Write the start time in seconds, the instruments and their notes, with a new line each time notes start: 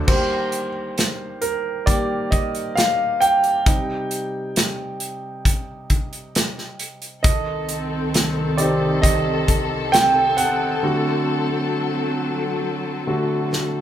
Already playing: grand piano A3 D4
0.07 grand piano D#3 G3 A#3 C5, kick, crash
0.52 closed hi-hat
0.98 snare, closed hi-hat
1.41 grand piano A#4, closed hi-hat
1.86 grand piano D#3 G3 A#3 D5, kick, closed hi-hat
2.31 grand piano D#5, kick, closed hi-hat
2.55 closed hi-hat
2.75 grand piano F5, snare, closed hi-hat
3.21 grand piano G5, closed hi-hat
3.44 closed hi-hat
3.66 grand piano C3 G3 D#4, kick, closed hi-hat
4.11 closed hi-hat
4.56 snare, closed hi-hat
5.00 closed hi-hat
5.45 kick, closed hi-hat
5.90 kick, closed hi-hat
6.13 closed hi-hat
6.35 snare, closed hi-hat
6.58 snare
6.79 closed hi-hat
7.02 closed hi-hat
7.23 string section C2 D#3 C4 A4, grand piano D#5, kick, closed hi-hat
7.69 closed hi-hat
8.14 snare, closed hi-hat
8.58 grand piano C3 C4 D#4 D5, closed hi-hat
9.02 string section C4, grand piano D#5, kick, closed hi-hat
9.48 kick, closed hi-hat
9.92 grand piano G5, snare, closed hi-hat
10.37 grand piano F#5, closed hi-hat
10.83 grand piano D3 A3 F#4, string section F#3
13.07 grand piano D3 A3 F#4
13.53 snare